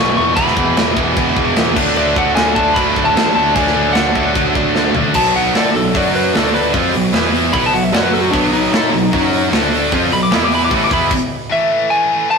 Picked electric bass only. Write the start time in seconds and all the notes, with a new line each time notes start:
Already playing: B1
0.17 E1
0.37 E1
0.57 E1
0.77 E1
0.97 E1
1.17 E1
1.37 E1
1.57 E1
1.77 D2
1.97 D2
2.36 D2
2.76 D2
2.97 D2
3.16 A1
3.36 D2
3.56 D2
3.75 D2
3.95 D2
4.16 D2
4.36 D2
4.55 D2
4.75 D2
4.95 D2
5.15 B1
5.55 A2
5.74 B1
5.95 F#2
6.34 D2
6.74 F2
6.94 B1
7.14 E2
7.54 B1
7.73 B1
7.92 F#2
8.34 B1
8.72 A2
8.92 B1
9.13 F#2
9.53 D2
9.93 F2
10.12 B1
10.33 E2
10.71 A1
10.91 E2